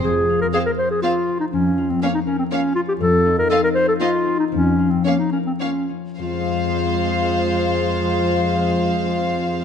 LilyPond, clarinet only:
\new Staff \with { instrumentName = "Clarinet" } { \time 3/4 \key f \minor \tempo 4 = 115 aes'8. bes'16 aes'16 bes'16 c''16 aes'16 f'8. ees'16 | des'8. c'16 des'16 ees'16 des'16 c'16 des'8 f'16 g'16 | a'8. bes'16 a'16 bes'16 c''16 a'16 f'8. ees'16 | des'8. c'16 des'16 ees'16 des'16 c'16 des'8 r8 |
f'2.~ | f'2. | }